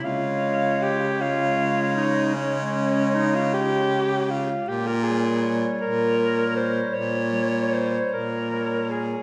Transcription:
<<
  \new Staff \with { instrumentName = "Clarinet" } { \time 12/8 \key des \lydian \tempo 4. = 52 des''4. des''4. des''2. | r8 des''4. des''4. des''4. des''4 | }
  \new Staff \with { instrumentName = "Alto saxophone" } { \time 12/8 \key des \lydian f'4 g'8 f'4 ees'8 des'4 ees'16 f'16 g'4 f'8 | g'16 bes'16 aes'8. r16 bes'4 c''8 des''4 c''8 bes'4 aes'8 | }
  \new Staff \with { instrumentName = "Clarinet" } { \clef bass \time 12/8 \key des \lydian aes4. aes4. aes2. | r8 g4. g4. g4. g4 | }
  \new Staff \with { instrumentName = "Baritone saxophone" } { \clef bass \time 12/8 \key des \lydian des1. | bes,4. bes,4. bes,4. bes,4. | }
>>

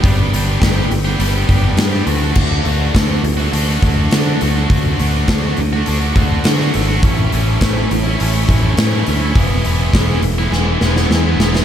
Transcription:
<<
  \new Staff \with { instrumentName = "Distorted electric guitar" } { \time 4/4 \key d \lydian \tempo 4 = 103 <g b d' g'>8 <g b d' g'>8 <g b d' g'>16 <b d' g'>8 <b d' g'>16 <g b d' g'>16 <b d' g'>16 <g b d' g'>8. <b d' g'>16 <d a d' fis'>16 <a d' fis'>16 | <d a d' fis'>8 <d a d' fis'>8 <d a d' fis'>16 <a d' fis'>8 <a d' fis'>16 <d a d' fis'>16 <a d' fis'>16 <d a d' fis'>8. <a d' fis'>16 <d a d' fis'>16 <a d' fis'>16 | <d a d' fis'>8 <d a d' fis'>8 <d a d' fis'>16 <a d' fis'>8 <a d' fis'>16 <d a d' fis'>16 <a d' fis'>16 <d a d' fis'>8. <a d' fis'>16 <d a d' fis'>16 <a d' fis'>16 | <a, e a cis' e'>8 <e a cis' e'>8 <a, e a cis' e'>16 <a cis' e'>8 <a cis' e'>16 <a, e a cis' e'>16 <a cis' e'>16 <e a cis' e'>8. <a cis' e'>16 <e a cis' e'>16 <a cis' e'>16 |
<e gis b e'>8 <e gis b e'>8 <e gis b e'>16 <gis b e'>8 <gis b e'>16 <e gis b e'>16 <gis b e'>16 <e gis b e'>8. <gis b e'>16 <e gis b e'>16 <gis b e'>16 | }
  \new Staff \with { instrumentName = "Picked electric bass" } { \clef bass \time 4/4 \key d \lydian g,,8 g,,8 g,,8 g,,8 g,,8 g,,8 g,8 d,8 | d,8 d,8 d,8 d,8 d,8 d,8 d8 d,8 | d,8 d,8 d,8 d,8 d,8 d,8 d8 gis,,8 | a,,8 a,,8 a,,8 a,,8 a,,8 a,,8 a,8 d,8 |
e,,8 e,,8 e,,8 e,,8 e,,8 e,,8 e,8 e,,8 | }
  \new DrumStaff \with { instrumentName = "Drums" } \drummode { \time 4/4 <hho bd>8 hho8 <hho bd sn>8 hho8 hho8 <hho bd>8 <hho sn>16 sn16 hho8 | <cymc bd>8 hho8 <hho bd sn>8 hho8 hho8 <hho bd>8 <hho sn>8 hho8 | <hho bd>8 hho8 <hho bd sn>8 hho8 hho8 <hho bd>8 <hho sn>16 sn16 hho8 | <hho bd>8 hho8 <hho bd sn>8 hho8 hho8 <hho bd>8 <hho sn>8 hho8 |
<hho bd>8 hho8 <hho bd sn>8 hho8 sn8 sn16 sn16 sn8 sn16 sn16 | }
>>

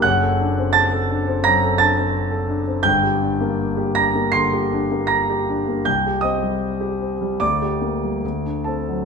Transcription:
\new Staff \with { instrumentName = "Grand piano" } { \time 4/4 \key d \phrygian \tempo 4 = 80 << { <fis'' fis'''>4 <a'' a'''>4 <bes'' bes'''>8 <a'' a'''>4. | <g'' g'''>4. <bes'' bes'''>8 <c''' c''''>4 <bes'' bes'''>4 | <g'' g'''>8 <ees'' ees'''>4. <d'' d'''>4. <a' a''>8 | } \\ { <fis,, fis,>16 a'16 d'16 c'8 a'16 d'16 c'16 fis,16 a'16 d'16 c'8 a'16 d'16 c'16 | <g,, g,>16 g'16 d'16 bes8 g'16 d'16 bes16 d16 g'16 d'16 bes8 g'16 d'16 bes16 | c,16 g'16 c'16 g8 g'16 c'16 g16 d,16 g'16 bes16 g16 d,16 d'16 c'16 fis16 | } >> }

